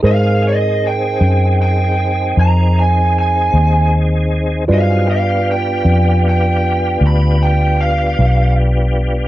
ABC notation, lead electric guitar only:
X:1
M:12/8
L:1/8
Q:3/8=52
K:Ablyd
V:1 name="Lead electric guitar"
f e g2 g2 b a a2 z2 | f f g2 g2 =b g f2 z2 |]